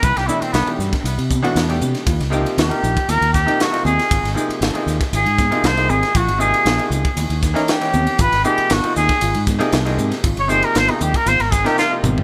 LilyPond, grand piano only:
\new Staff \with { instrumentName = "Grand piano" } { \time 4/4 \key aes \major \tempo 4 = 117 r16 <d' g'>16 <b, e a d' e'>8 r16 <b, e a d' g'>8 r16 <d' g'>16 r8 <b, e a d' ges'>16 r16 <b, e a d' g'>8. | r16 <ees' g'>16 <c f bes ees' g'>8 r16 <c f bes ees' bes'>8 r16 <ees' bes'>16 r8 <c f bes ees' g'>16 r16 <c f bes ees' f'>8. | r16 <ees' aes'>16 <c f bes ees' aes'>8 r16 <c f bes ees' aes'>8 r16 <ees' aes'>16 r8 <c f bes ees' f'>16 r16 <c f bes ees' aes'>8. | r16 <ees' aes'>16 <c f bes ees' aes'>8 r16 <c f bes ees' aes'>8 r16 <ees' g'>16 r8 <fes bes des' ees' bes'>16 r16 <fes bes des' ees' g'>8. |
r16 <ees' aes'>16 <c f bes ees' aes'>8 r16 <c f bes ees' f'>8 r16 <ees' f'>16 r8 <c f bes ees' aes'>16 r16 <c f bes ees' aes'>8. | r16 <ees' aes'>16 <c f bes ees' aes'>8 r16 <c f bes ees' aes'>8 r16 <ees' aes'>16 r8 <c f bes ees' bes'>16 r16 <c f bes ees' f'>8. | }